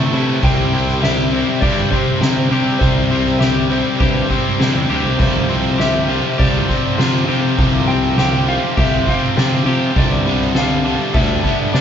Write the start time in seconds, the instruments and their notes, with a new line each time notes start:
Already playing: distorted electric guitar A2, overdriven electric guitar C3 E3 A3 E4 A4, clean electric guitar C3 G3 E4, ambient pad G4 C5 B5 E6
0.11 distorted electric guitar A2, overdriven electric guitar C3 E3 A3 E4 A4, fingered electric bass C3, crash
0.41 fingered electric bass C2, overdriven electric guitar C3 G3 C4 E4 G4, ambient pad G4 E5 C6, electric slide guitar G5, kick, crash
0.72 overdriven electric guitar C3 G3 C4 E4 G4, crash
0.88 snare
1.01 overdriven electric guitar C3 G3 C4 E4 G4, electric slide guitar E5, snare, crash
1.32 overdriven electric guitar C3 G3 C4 E4 G4, crash
1.61 fingered electric bass G2, overdriven electric guitar C3 G3 C4 E4, electric slide guitar D5, kick, crash
1.65 overdriven electric guitar G4
1.90 overdriven electric guitar C3 G3 C4 E4, electric slide guitar C5, kick, crash
1.94 overdriven electric guitar G4
2.21 fingered electric bass C3, overdriven electric guitar C3 G3 C4 E4 G4, snare, crash
2.51 fingered electric bass C3, overdriven electric guitar C3 G3 C4 E4 G4, crash
2.79 fingered electric bass C2, overdriven electric guitar C3 G3 C4 E4 G4, electric slide guitar C5, ambient pad B5, kick, crash
3.10 overdriven electric guitar C3 G3 C4 E4 G4, crash
3.27 snare
3.39 overdriven electric guitar C3 G3 C4 E4, electric slide guitar E5, snare, crash
3.43 overdriven electric guitar G4
3.71 overdriven electric guitar C3 G3 C4 E4 G4, electric slide guitar C5, crash
4.00 fingered electric bass G2, overdriven electric guitar C3 G3 C4 E4 G4, kick, crash
4.30 overdriven electric guitar C3 G3 C4 E4 G4, kick, crash
4.60 fingered electric bass C3, overdriven electric guitar C3 G3 C4 E4 G4, snare, crash
4.74 fingered electric bass E2
4.89 fingered electric bass D2, overdriven electric guitar C3 G3 C4 E4 G4, crash
5.05 fingered electric bass C2
5.19 fingered electric bass C2, distorted electric guitar F2, overdriven electric guitar C3 F3 C4 F4 G4, ambient pad F4 G5 C6, kick, crash
5.23 electric slide guitar C5
5.47 distorted electric guitar F2, overdriven electric guitar C3 F3 C4 F4 G4, crash
5.78 distorted electric guitar F2, overdriven electric guitar C3 F3 C4, electric slide guitar E5, snare, crash
5.82 overdriven electric guitar F4 G4
6.08 distorted electric guitar F2, overdriven electric guitar C3 F3 C4 F4 G4, crash
6.39 fingered electric bass C2, distorted electric guitar F2, overdriven electric guitar C3 F3 C4 F4 G4, electric slide guitar D5, kick, crash
6.69 distorted electric guitar F2, overdriven electric guitar C3 F3 C4 F4 G4, kick, crash
6.98 distorted electric guitar F2, overdriven electric guitar C3 F3 C4 F4 G4, fingered electric bass C3, electric slide guitar C5, snare, crash
7.28 distorted electric guitar F2, overdriven electric guitar C3 F3 C4 F4 G4, fingered electric bass C3, crash
7.59 fingered electric bass C2, distorted electric guitar F2, overdriven electric guitar C3 F3 C4 F4 G4, kick, crash
7.88 distorted electric guitar F2, overdriven electric guitar C3 F3 C4 F4 G4, electric slide guitar G5, crash
8.17 distorted electric guitar F2, overdriven electric guitar C3 F3 C4 F4 G4, electric slide guitar G5, snare, crash
8.46 distorted electric guitar F2, overdriven electric guitar C3 F3 C4 F4 G4, electric slide guitar F5, crash
8.76 fingered electric bass C2, distorted electric guitar F2, overdriven electric guitar C3 F3 C4 F4 G4, electric slide guitar E5, kick, crash
9.07 distorted electric guitar F2, overdriven electric guitar C3 F3 C4 F4 G4, electric slide guitar F5, kick, crash
9.36 distorted electric guitar F2, fingered electric bass C3, overdriven electric guitar C3 F3 C4 F4 G4, snare, crash
9.66 distorted electric guitar F2, fingered electric bass C3, overdriven electric guitar C3 F3 C4 F4, crash
9.70 overdriven electric guitar G4
9.95 fingered electric bass C2, overdriven electric guitar G2 D3 G3 B3 D4 G4, clean electric guitar C3, ambient pad A4 D5 B5, electric slide guitar D5, kick, crash
10.26 overdriven electric guitar G2 D3 G3 B3 D4 G4, crash
10.41 snare
10.54 overdriven electric guitar G2 D3 G3 B3 D4 G4, clean electric guitar A4, electric slide guitar F5, snare, crash
10.84 overdriven electric guitar G2 D3 G3 B3 D4 G4, crash
11.13 fingered electric bass D2, overdriven electric guitar G2 D3 G3 B3 D4 G4, clean electric guitar A4, electric slide guitar E5, kick, crash
11.43 overdriven electric guitar G2 D3 G3 B3 D4 G4, kick, crash
11.73 overdriven electric guitar G2 D3 G3 B3 D4 G4, fingered electric bass C3, electric slide guitar D5, snare, crash